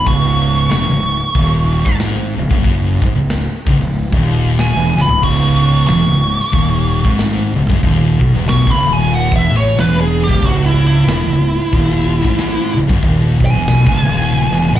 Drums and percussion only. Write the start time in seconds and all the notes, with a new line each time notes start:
0.07 kick, open hi-hat
0.44 open hi-hat
0.71 snare, open hi-hat
1.09 open hi-hat
1.35 kick, open hi-hat
1.72 open hi-hat
1.86 kick, snare
1.99 snare, open hi-hat
2.37 open hi-hat
2.51 kick
2.64 kick, open hi-hat
3.02 kick, open hi-hat
3.29 snare, open hi-hat
3.66 kick, open hi-hat
3.81 snare
3.93 open hi-hat
4.12 kick
4.31 open hi-hat
4.58 snare, open hi-hat
4.97 snare
5.09 floor tom
5.23 kick, splash, crash
5.61 open hi-hat
5.88 snare, open hi-hat
6.26 open hi-hat
6.40 snare
6.53 kick, open hi-hat
6.91 open hi-hat
7.05 kick
7.18 snare, open hi-hat
7.57 open hi-hat
7.70 kick
7.83 kick, open hi-hat
8.21 kick, open hi-hat
8.48 snare, open hi-hat
8.67 kick
8.86 open hi-hat
9.00 snare
9.13 open hi-hat
9.32 kick
9.51 open hi-hat
9.66 snare
9.78 snare, open hi-hat
10.16 open hi-hat
10.29 kick
10.43 kick, open hi-hat
10.81 open hi-hat
11.08 snare, open hi-hat
11.46 open hi-hat
11.60 snare
11.73 kick, open hi-hat
12.11 open hi-hat
12.24 kick, snare
12.38 snare, open hi-hat
12.76 open hi-hat
12.89 kick
13.03 kick, open hi-hat
13.40 kick, open hi-hat
13.67 snare, open hi-hat
13.87 kick
14.05 open hi-hat
14.20 snare
14.33 high tom
14.52 snare